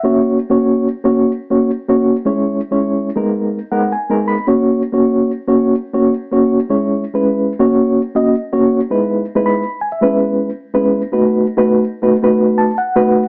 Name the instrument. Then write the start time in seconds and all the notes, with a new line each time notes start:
reed electric piano
Already playing: E5
0.03 A#3 C#4 F#4 C#5
0.50 A#3 C#4 F#4 C#5
1.04 A#3 C#4 F#4 C#5
1.50 A#3 C#4 F#4 C#5
1.89 A#3 C#4 F#4 C#5
2.25 G#3 C#4 E4 C#5
2.71 G#3 C#4 E4 C#5
3.16 G#3 B3 D#4 A#4
3.71 G#3 B3 D#4 A#4 F#5
3.92 G#5
4.10 G#3 B3 D#4 A#4
4.28 B5
4.47 A#3 C#4 F#4 C#5
4.92 A#3 C#4 F#4 C#5
5.48 A#3 C#4 F#4 C#5
5.93 A#3 C#4 F#4 C#5
6.32 A#3 C#4 F#4 C#5
6.69 G#3 C#4 E4 C#5
7.14 G#3 C#4 E4 B4
7.59 A#3 C#4 F#4 C#5
8.15 A#3 C#4 F#4 D#5
8.52 A#3 C#4 F#4 C#5
8.90 G#3 B3 D#4 E4 B4
9.35 G#3 B3 D#4 E4 B4
9.46 B5
9.81 G#5
9.92 E5
10.01 G#3 B3 C#4 E4 B4
10.74 G#3 B3 C#4 E4 B4
11.12 A3 B3 D#4 F#4 B4
11.57 A3 B3 D#4 F#4 B4
12.02 A3 B3 D#4 F#4 B4
12.23 A3 B3 D#4 F#4 B4
12.58 A5
12.78 F#5
12.96 A3 B3 D#4 F#4 B4